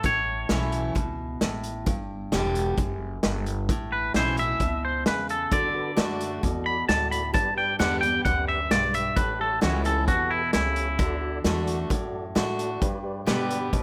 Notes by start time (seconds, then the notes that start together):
0.03 A1 A2 C#5, kick, closed hi-hat
0.49 B1 E3 A3 C#4 E4, snare, closed hi-hat
0.72 closed hi-hat
0.95 C#2 B2, kick, closed hi-hat
1.41 A1 A2, snare, closed hi-hat
1.64 closed hi-hat
1.86 G1 G2, kick, closed hi-hat
2.32 E1 D3 G3 B3 G4, snare, closed hi-hat
2.55 closed hi-hat
2.77 F#1 F#2, kick, closed hi-hat
3.23 G1 G2, snare, closed hi-hat
3.46 closed hi-hat
3.69 A1 A2, kick, closed hi-hat
3.92 B4
4.14 B1 E3 A3 C#4 E4 C5, snare, closed hi-hat
4.37 C#4 E4 E5, closed hi-hat
4.60 C#2 B2, kick, closed hi-hat
4.85 C5
5.06 E2 C#3 B4, snare, closed hi-hat
5.29 A4, closed hi-hat
5.51 D2 D3 F#4 A4 D5, kick, closed hi-hat
5.74 F#4 A4 B4, muted upright bass stroke
5.96 F#2 D3 A3 D4 F#4 A4 D5, snare, closed hi-hat
6.21 closed hi-hat
6.41 E2 B2 F#4 A4 D5, kick, closed hi-hat
6.66 B5
6.87 D2 A2 F#4 A4 D5 A5, snare, closed hi-hat
7.11 B5, closed hi-hat
7.33 G2 G4 B4 D5 A5, kick, closed hi-hat
7.56 G4 B4 D5 G5
7.79 E2 D3 G3 B3 G4 B4 D5 F#5, snare, closed hi-hat
8.01 G4 G5, closed hi-hat
8.05 B3
8.25 D2 F#2 G4 B4 D5 F#5, kick, closed hi-hat
8.48 E5
8.70 B1 G2 G4 B4 D5, snare, closed hi-hat
8.94 E5, closed hi-hat
9.16 A1 A2 G4 A4 B4 C#5, kick, closed hi-hat
9.39 G4 A4 C#5
9.61 C#2 E3 G3 C#4 E4 F#4 G4 A4 C#5, snare, closed hi-hat
9.84 C#4 E4 A4, closed hi-hat
10.08 E2 B2 F#4 G4 A4 B4, kick, closed hi-hat
10.31 E4
10.53 C#2 C#3 E4 G4 A4 C#5, snare, closed hi-hat
10.76 closed hi-hat
10.98 D2 D3 F#4 A4 D5, kick, closed hi-hat
11.21 F#4 A4 D5
11.44 E2 D3 A3 D4 F#4 A4 D5, snare, closed hi-hat
11.67 closed hi-hat
11.90 F#2 A2 F#4 A4 D5, kick, closed hi-hat
12.35 A2 D3 A3 D4 F#4 A4 D5, snare, closed hi-hat
12.59 closed hi-hat
12.80 G2 G4 B4 D5, kick, closed hi-hat
13.03 G4 B4 D5
13.26 B2 D3 G3 B3 G4 B4 D5, snare, closed hi-hat
13.51 closed hi-hat
13.72 A2 B2 G4 B4 C#5, kick, closed hi-hat